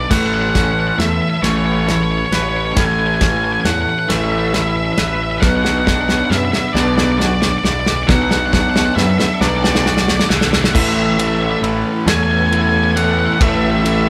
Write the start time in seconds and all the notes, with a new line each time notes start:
Already playing: B3 D4 F#4 B4
0.10 A1 A2 E3 A3 C#4 A4 F#5, kick, snare, crash
0.18 F#5
0.26 F#5
0.34 F#5
0.42 F#5
0.50 F#5
0.55 C#4 F#5, kick, snare, ride
0.64 F#5
0.72 F#5
0.80 F#5
0.88 F#5
0.98 E2 A2 E3 A3 E5, snare, ride
1.07 E5
1.14 E5
1.22 E5
1.30 E5
1.36 E5
1.42 A1 A2 E3 A3 C#4 C#5, snare, ride
1.50 C#5
1.57 C#5
1.66 C#5
1.73 C#5
1.81 C#5
1.87 A2 E3 E4 C#5, snare, ride
1.96 C#5
2.03 C#5
2.12 C#5
2.18 C#5
2.26 C#5
2.31 A1 B4 C#5, snare, ride
2.43 C#5
2.49 C#5
2.57 C#5
2.66 C#5
2.73 A1 A2 E3 C#5 G#5
2.77 A2 A3, kick, snare, ride
2.85 G#5
2.93 G#5
3.00 G#5
3.07 G#5
3.15 G#5
3.21 C#4 G#5, kick, snare, ride
3.30 G#5
3.37 G#5
3.44 G#5
3.53 G#5
3.61 E2 A2 G#5
3.65 E3 A3 F#5, snare, ride
3.73 F#5
3.82 F#5
3.89 F#5
3.99 F#5
4.08 A1 A2 E3 A3 C#4 E5, snare, ride
4.15 E5
4.24 E5
4.32 E5
4.39 E5
4.48 E5
4.53 A2 E3 E4 E5, snare, ride
4.62 E5
4.70 E5
4.77 E5
4.85 E5
4.93 E5
4.98 A1 B4 E5, snare, ride
5.08 E5
5.15 E5
5.23 E5
5.31 E5
5.38 D5 E5 F#5, snare
5.42 B1 B2 F#3 B3 D4, kick
5.48 F#5
5.56 F#5
5.62 F#5, snare
5.70 F#5
5.78 F#5
5.86 D4 F#5, kick, snare
5.94 F#5
6.01 F#5
6.09 F#5, snare
6.18 F#5
6.25 F#5
6.30 F#2 B2 F#3 B3 E5, snare
6.37 E5
6.45 E5
6.52 E5, snare
6.60 E5
6.68 E5
6.73 B1 B2 F#3 B3 D4 D5, snare
6.80 D5
6.88 D5
6.97 D5, snare
7.04 D5
7.12 D5
7.18 B2 F#3 F#4 D5, snare
7.27 D5
7.34 D5
7.42 D5, snare
7.51 D5
7.58 D5
7.64 B1 D5, snare
7.72 D5
7.80 D5
7.86 D5, snare
7.96 D5
8.03 D5 F#5
8.07 B1 B2 F#3 B3 A4, kick, snare
8.14 F#5
8.22 F#5
8.31 F#5, snare
8.38 F#5
8.46 F#5
8.53 D4 F#5, kick, snare
8.61 F#5
8.70 F#5
8.76 F#5, snare
8.85 F#5
8.95 F#2 B2 F#3 B3 E5, snare
9.03 E5
9.11 E5
9.18 E5, snare
9.26 E5
9.34 E5
9.41 B1 B2 F#3 B3 D4 D5, snare
9.49 D5
9.57 D5
9.64 D5, snare
9.71 D5
9.75 D5, snare
9.85 B2 F#3 F#4 D5, snare
9.95 D5, snare
10.01 D5
10.08 D5, snare
10.16 D5, snare
10.25 D5
10.29 B1 D5 F#5, snare
10.37 D5 F#5
10.41 snare
10.45 D5 F#5
10.53 D5 F#5, snare
10.62 D5 F#5, snare
10.73 A1 A2 C#3 E3 A3 A4 B4 E5, kick, crash
10.80 E5
10.89 E5
10.96 E5
11.04 E5
11.12 E5
11.18 A2 E3 A3 E5, ride
11.27 E5
11.35 E5
11.42 E5
11.51 E5
11.62 A1 E4, ride
12.06 E2 A2 E3 A3 C#4 G#5, snare, ride
12.15 G#5
12.23 G#5
12.31 G#5
12.39 G#5
12.46 G#5
12.51 A2 E3 A3 E4 G#5, ride
12.62 G#5
12.69 G#5
12.77 G#5
12.84 G#5
12.91 G#5
12.95 A2 E3 A3 F#5, ride
13.04 F#5
13.11 F#5
13.19 F#5
13.26 F#5
13.33 F#5
13.40 A1 A2 E3 A3 E5, kick, ride
13.48 E5
13.55 E5
13.64 E5
13.71 E5
13.80 E5
13.84 A2 E3 A3 E5, ride
13.94 E5
14.01 E5